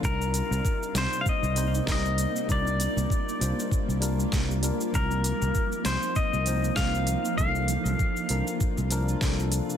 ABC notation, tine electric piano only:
X:1
M:4/4
L:1/8
Q:"Swing 16ths" 1/4=98
K:Cdor
V:1 name="Tine electric piano"
[G,CEB]3 [G,CEc]2 [G,CEc] [G,CEB]2 | [G,DFB]3 [G,DFc]2 [G,DFB]2 [G,DFB] | [F,CEB]3 [F,CEc]2 [F,CEc] [F,CEB]2 | [F,B,DA]3 [F,B,DB]2 [F,B,DB] [F,B,DA]2 |]